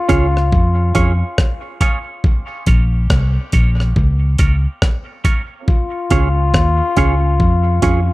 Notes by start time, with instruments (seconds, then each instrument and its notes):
Already playing: trombone F4
0.09 fingered electric bass C#2, clean electric guitar C#4 F4 G#4 C#5, kick, closed hi-hat
0.37 cross-stick
0.53 fingered electric bass F2, kick
0.95 fingered electric bass F2, clean electric guitar C#4 F4 G#4 C#5, kick, closed hi-hat
1.38 kick, cross-stick
1.81 clean electric guitar C#4 F4 G#4 C#5, kick, closed hi-hat
2.24 trombone G4, kick
2.66 fingered electric bass A#1, clean electric guitar C#4 F4 A#4 C#5, kick, closed hi-hat
3.10 fingered electric bass C2, kick, cross-stick
3.52 fingered electric bass A#1, clean electric guitar C#4 F4 A#4 C#5, kick, closed hi-hat
3.80 cross-stick
3.96 fingered electric bass C#2, kick
4.38 fingered electric bass C#2, clean electric guitar C#4 F4 A#4 C#5, kick, closed hi-hat
4.82 kick, cross-stick
5.24 clean electric guitar C#4 F4 A#4 C#5, kick, closed hi-hat
5.68 trombone F4, kick
6.10 fingered electric bass C#2, clean electric guitar C#4 F4 G#4 C#5, kick, closed hi-hat
6.54 fingered electric bass D#2, kick, cross-stick
6.97 fingered electric bass C#2, clean electric guitar C#4 F4 G#4 C#5, kick, closed hi-hat
7.40 fingered electric bass F2, kick
7.82 fingered electric bass F2, clean electric guitar C#4 F4 G#4 C#5, kick, closed hi-hat